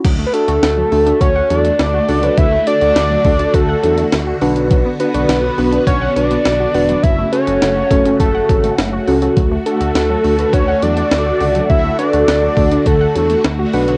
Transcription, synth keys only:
X:1
M:4/4
L:1/16
Q:1/4=103
K:Dlyd
V:1 name="Synth keys"
z2 [DFA] [DFA]2 z [DFA] [DFA]2 z [DFA]2 z2 [DFA] [DFB]- | [DFB] z [DFA] [DFA]2 z [DFA] [DFA]2 z [DFA]2 z2 [DFB]2- | [DFB] z [DFB] [DFd]2 z [DFB] [DFB]2 z [DFB]2 z2 [DFB] [DFB] | z2 [CFA] [CFA]2 z [CFA] [CFA]2 z [CFA]2 z2 [CFA] [CFA] |
z2 [DFA] [DFA]2 z [DFA] [DFB]2 z [DFA]2 z2 [DFA] [DFA]- | [DFA] z [DFB] [DFA]2 z [DFA] [DFA]2 z [DFA]2 z2 [DFB]2 |]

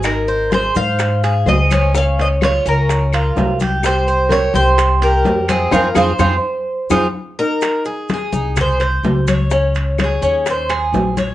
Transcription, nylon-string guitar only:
X:1
M:4/4
L:1/8
Q:1/4=127
K:Ab
V:1 name="Nylon-string guitar"
E2 A c3 c2 | d c A F4 z | G2 B G2 G2 F | F A4 z2 E- |
E z6 z | z8 |]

